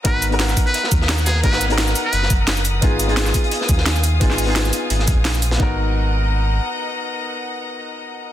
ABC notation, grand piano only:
X:1
M:4/4
L:1/16
Q:"Swing 16ths" 1/4=173
K:G#dor
V:1 name="Grand piano"
[B,DFA]3 [B,DFA]12- [B,DFA] | [B,DFA]3 [B,DFA]12- [B,DFA] | [B,DEG]3 [B,DEG]12- [B,DEG] | [B,DEG]3 [B,DEG]12- [B,DEG] |
[B,DFA]16- | [B,DFA]16 |]